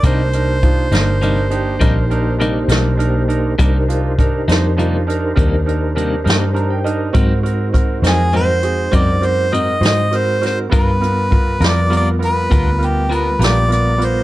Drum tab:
HH |xxxxxxxxxxxx|xxxxxxxxxxxx|xxxxxxxxxxxx|xxxxxxxxxxxx|
SD |---o-----o--|---o-----o--|---o-----o-o|---o-----o--|
BD |o-o---o-----|o-o---o-----|o-o---o-----|o-o---o-----|